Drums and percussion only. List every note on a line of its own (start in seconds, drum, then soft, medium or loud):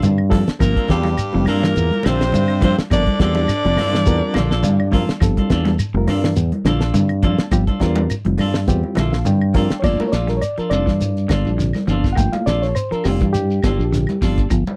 0.02 closed hi-hat medium
0.02 high conga medium
0.02 low conga medium
0.02 shekere medium
0.18 claves medium
0.31 kick medium
0.31 open hi-hat medium
0.31 low conga medium
0.31 shekere soft
0.48 snare medium
0.48 closed hi-hat soft
0.60 kick medium
0.60 closed hi-hat medium
0.60 claves medium
0.60 shekere medium
0.76 kick medium
0.76 closed hi-hat soft
0.88 kick medium
0.88 snare medium
0.88 closed hi-hat soft
0.88 low conga medium
0.88 shekere soft
1.03 snare soft
1.03 closed hi-hat soft
1.03 high conga medium
1.17 closed hi-hat medium
1.17 claves medium
1.17 shekere medium
1.33 high conga medium
1.45 open hi-hat medium
1.45 high conga medium
1.45 low conga medium
1.45 claves medium
1.45 shekere soft
1.64 snare medium
1.76 closed hi-hat medium
1.76 shekere medium
1.91 closed hi-hat soft
1.91 high conga medium
2.03 snare medium
2.03 closed hi-hat medium
2.03 high conga medium
2.03 claves medium
2.03 shekere soft
2.21 snare medium
2.21 closed hi-hat soft
2.32 closed hi-hat medium
2.32 high conga medium
2.32 low conga medium
2.32 shekere medium
2.48 closed hi-hat soft
2.48 claves medium
2.61 kick medium
2.61 closed hi-hat medium
2.61 high conga medium
2.61 low conga medium
2.61 shekere soft
2.78 snare medium
2.78 closed hi-hat soft
2.91 kick medium
2.91 snare soft
2.91 closed hi-hat medium
2.91 claves medium
2.91 shekere medium
3.06 kick medium
3.06 closed hi-hat soft
3.06 high conga medium
3.19 kick medium
3.19 snare medium
3.19 closed hi-hat soft
3.19 low conga medium
3.19 shekere soft
3.35 snare soft
3.35 high conga medium
3.48 closed hi-hat medium
3.48 claves medium
3.48 shekere medium
3.65 closed hi-hat soft
3.77 open hi-hat medium
3.77 high conga medium
3.77 low conga medium
3.77 claves medium
3.77 shekere soft
3.95 snare medium
4.06 kick medium
4.06 closed hi-hat medium
4.06 shekere loud
4.34 snare medium
4.34 closed hi-hat medium
4.34 high conga loud
4.34 claves medium
4.34 shekere soft
4.51 snare medium
4.63 closed hi-hat medium
4.63 high conga medium
4.63 low conga medium
4.63 shekere loud
4.80 claves medium
4.92 kick medium
4.92 open hi-hat medium
4.92 high conga medium
4.92 low conga medium
4.92 shekere soft
5.09 snare medium
5.09 closed hi-hat soft
5.20 kick medium
5.20 snare soft
5.20 closed hi-hat medium
5.20 claves medium
5.20 shekere medium
5.37 kick medium
5.37 closed hi-hat soft
5.37 high conga medium
5.50 kick medium
5.50 snare medium
5.50 closed hi-hat soft
5.50 low conga medium
5.50 shekere soft
5.65 snare soft
5.65 closed hi-hat soft
5.65 high conga medium
5.79 closed hi-hat medium
5.79 claves medium
5.79 shekere loud
6.08 open hi-hat medium
6.08 high conga medium
6.08 low conga medium
6.08 claves medium
6.08 shekere soft
6.24 snare medium
6.36 closed hi-hat medium
6.36 shekere medium
6.52 closed hi-hat soft
6.52 high conga medium
6.65 snare medium
6.65 closed hi-hat medium
6.65 high conga medium
6.65 claves medium
6.65 shekere soft
6.80 snare medium
6.80 closed hi-hat soft
6.94 closed hi-hat medium
6.94 high conga medium
6.94 low conga medium
6.94 shekere medium
7.09 closed hi-hat soft
7.09 claves medium
7.23 kick medium
7.23 closed hi-hat medium
7.23 high conga medium
7.23 low conga medium
7.23 shekere soft
7.38 snare medium
7.38 closed hi-hat soft
7.51 kick medium
7.51 closed hi-hat medium
7.51 claves medium
7.51 shekere medium
7.67 kick medium
7.67 closed hi-hat soft
7.67 high conga medium
7.80 kick medium
7.80 snare medium
7.80 closed hi-hat soft
7.80 low conga medium
7.80 shekere soft
7.96 high conga loud
8.10 closed hi-hat medium
8.10 claves medium
8.10 shekere medium
8.25 closed hi-hat soft
8.25 high conga medium
8.38 open hi-hat medium
8.38 high conga medium
8.38 low conga medium
8.38 claves medium
8.38 shekere soft
8.54 snare medium
8.68 kick medium
8.68 closed hi-hat medium
8.68 shekere medium
8.83 high conga medium
8.95 snare medium
8.95 closed hi-hat medium
8.95 high conga loud
8.95 claves medium
8.95 shekere soft
9.13 snare medium
9.25 closed hi-hat medium
9.25 high conga medium
9.25 low conga medium
9.25 shekere medium
9.41 claves medium
9.54 kick medium
9.54 open hi-hat medium
9.54 high conga medium
9.54 low conga medium
9.54 shekere soft
9.70 snare medium
9.70 closed hi-hat soft
9.83 kick medium
9.83 crash medium
9.83 claves medium
9.83 shekere medium
10.00 high conga medium
10.00 shekere soft
10.12 snare medium
10.12 closed hi-hat soft
10.12 shekere medium
10.28 snare soft
10.28 closed hi-hat soft
10.28 shekere soft
10.41 closed hi-hat medium
10.41 claves medium
10.41 shekere medium
10.58 closed hi-hat soft
10.58 shekere soft
10.71 closed hi-hat soft
10.71 high conga medium
10.71 low conga medium
10.71 claves medium
10.71 shekere medium
10.87 kick medium
10.87 snare soft
10.87 shekere soft
11.00 closed hi-hat medium
11.00 high conga medium
11.00 shekere medium
11.17 closed hi-hat soft
11.17 shekere soft
11.29 kick medium
11.29 snare medium
11.29 closed hi-hat medium
11.29 high conga medium
11.29 claves medium
11.29 shekere medium
11.45 high conga medium
11.45 shekere soft
11.59 snare soft
11.59 closed hi-hat medium
11.59 low conga medium
11.59 shekere medium
11.73 snare soft
11.73 closed hi-hat soft
11.73 high conga medium
11.73 claves medium
11.73 shekere soft
11.88 closed hi-hat soft
11.88 high conga medium
11.88 low conga medium
11.88 shekere medium
12.04 kick medium
12.04 snare soft
12.04 shekere soft
12.15 kick medium
12.15 closed hi-hat medium
12.15 claves medium
12.15 shekere medium
12.33 closed hi-hat soft
12.33 high conga medium
12.33 shekere soft
12.47 snare medium
12.47 closed hi-hat soft
12.47 low conga medium
12.47 shekere medium
12.63 snare soft
12.63 closed hi-hat soft
12.63 shekere soft
12.75 closed hi-hat medium
12.75 claves medium
12.75 shekere medium
12.92 closed hi-hat soft
12.92 shekere soft
13.04 open hi-hat medium
13.04 high conga medium
13.04 low conga medium
13.04 claves medium
13.04 shekere medium
13.21 kick medium
13.21 closed hi-hat soft
13.21 shekere soft
13.34 closed hi-hat medium
13.34 high conga medium
13.34 shekere medium
13.51 shekere soft
13.63 kick medium
13.63 snare medium
13.63 closed hi-hat medium
13.63 high conga medium
13.63 claves medium
13.63 shekere medium
13.80 shekere soft
13.93 snare soft
13.93 closed hi-hat medium
13.93 low conga medium
13.93 shekere medium
14.07 closed hi-hat soft
14.07 high conga medium
14.07 claves medium
14.07 shekere soft
14.22 kick medium
14.22 open hi-hat medium
14.22 high conga medium
14.22 low conga medium
14.22 shekere medium
14.38 kick medium
14.38 closed hi-hat soft
14.38 shekere soft
14.50 kick medium
14.50 closed hi-hat medium
14.50 claves medium
14.50 shekere medium
14.67 high conga medium
14.67 shekere soft